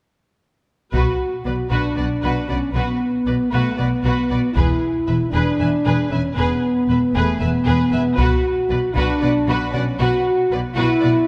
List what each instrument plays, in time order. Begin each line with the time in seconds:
0.92 double bass section B1, cello section B2, french horn section F#4, violin section F#4 B4, viola section B4, taiko
1.45 double bass section B1, cello section B2, violin section B4 D5, viola section B4
1.71 double bass section B1, cello section B2, french horn section D4, violin section F#4 B4, viola section B4, taiko
1.97 double bass section B1, cello section B2, viola section B4, violin section D5 F#5
2.23 double bass section B1, cello section B2, violin section F#4 B4, viola section B4
2.48 double bass section B1, cello section B2, french horn section C#4, viola section B4, violin section D5 F#5
2.72 double bass section B1, cello section B2, french horn section B3, violin section F#4 B4, viola section B4
3.26 double bass section B1, cello section B2, violin section B4 D5, viola section B4
3.50 double bass section B1, cello section B2, french horn section A3, violin section F#4 B4, viola section B4
3.75 double bass section B1, cello section B2, french horn section B3, viola section B4, violin section D5 F#5
4.04 double bass section B1, cello section B2, violin section F#4 B4, viola section B4
4.30 double bass section B1, cello section B2, viola section B4, violin section D5 F#5
4.53 cello section E2, french horn section E4, violin section G#4 B4, viola section B4, taiko
4.57 double bass section E1
5.07 double bass section E1, cello section E2, viola section B4, violin section B4 E5
5.30 double bass section E1, french horn section D4, violin section G#4 B4
5.34 cello section E2, viola section B4
5.58 double bass section E1, cello section E2, viola section B4, violin section E5 G#5
5.85 double bass section E1, cello section E2, violin section G#4 B4, viola section B4
6.09 double bass section E1, cello section E2, french horn section C#4, viola section B4, violin section E5 G#5
6.35 double bass section E1, cello section E2, french horn section B3, violin section G#4 B4, viola section B4
6.88 double bass section E1, cello section E2, viola section B4, violin section B4 E5
7.14 double bass section E1, cello section E2, french horn section A3, violin section G#4 B4, viola section B4
7.40 double bass section E1, cello section E2, french horn section B3, viola section B4, violin section E5 G#5
7.65 double bass section E1, cello section E2, violin section G#4 B4, viola section B4
7.92 double bass section E1, cello section E2, viola section B4, violin section E5 G#5
8.17 double bass section B1, cello section B2, french horn section F#4, violin section F#4 B4, viola section B4, taiko
8.69 double bass section B1, cello section B2, violin section B4 D5, viola section B4
8.94 double bass section B1, cello section B2, french horn section D4, violin section F#4 B4, viola section B4, taiko
9.21 double bass section B1, cello section B2, viola section B4, violin section D5 F#5
9.47 double bass section B1, cello section B2, violin section F#4 B4, viola section B4
9.72 double bass section B1, cello section B2, french horn section C#4, viola section B4, violin section D5 F#5
9.99 double bass section B1, cello section B2, violin section F#4 B4, french horn section F#4, viola section B4
10.51 double bass section B1, cello section B2, violin section B4 D5, viola section B4
10.76 double bass section B1, cello section B2, french horn section E4, violin section F#4 B4, viola section B4
11.01 double bass section B1, cello section B2, viola section B4, violin section D5 F#5